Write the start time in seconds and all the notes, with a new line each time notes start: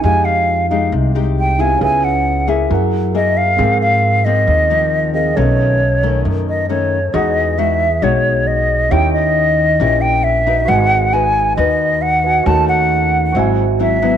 0.01 F2 D#4 G4 G#5
0.05 F3 G#3 D#4 G4 F5
0.25 F5
0.70 G#3 D#4 G4 F5
0.92 C2 C3
1.15 G#3 D#4 G4
1.39 G5
1.58 B3 D#4 E4 G4 G#4 F5 G#5
1.78 C#2 C#3 C#4 G#4
1.83 B4 E5 G#5
2.04 F#5
2.47 A#3 E4 G#4 E5
2.67 F#2 F#3 E4 G#4
2.72 A#4 F#5
3.14 A#3 E4 G#4 D#5
3.37 F5
3.56 G#2 F3 A#3 C4 G#4 A#4
3.62 F5
3.81 F5
4.25 F3 A#3 C4 D#5
4.47 D#2 D#3
4.70 F3 A#3 C4
5.13 C4 G#4 A#4 D#5 F5
5.34 B1 B2 D#3 A3 C#4 A4 B4 C#5
5.40 D#5
6.03 D#3 A3 C#4
6.25 F#2
6.49 D#5
6.69 D#3 A3 C#4 C#5
7.14 E2 E3 G#3 D#4 F#4 G#4 D#5 F#5 D#6
7.58 G#3 D#4 F#4 E5
8.02 B1 B2 G#3 D#4 F#4 C#5
8.47 D#5
8.89 D#2 D#3 C#4 D#4 E4 G4 C#5 G5
8.95 G5
9.13 D#5
9.80 A#1 A#2 C#4 E4 G4
10.01 G5
10.24 E5
10.47 D#4 F#4 B4
10.65 G#1 G#3 F#4 B4 F#5
10.70 D#5 G#5
11.13 D#4 F#4 B4 G#5
11.57 D#2 D#3 D#4 F#4 B4 D#5
12.02 F#5
12.23 F#4 B4 D#5 G#5
12.44 D#2 D#3 A3 C#4 F#4 C#5 D#5 A5
12.49 A5
12.69 F#5
13.32 G#1 G#2 F#3 E4 F#4 C5 E5
13.37 C4 G#5
13.79 F#3 C4 E4 E5
14.02 F#3 B3 E4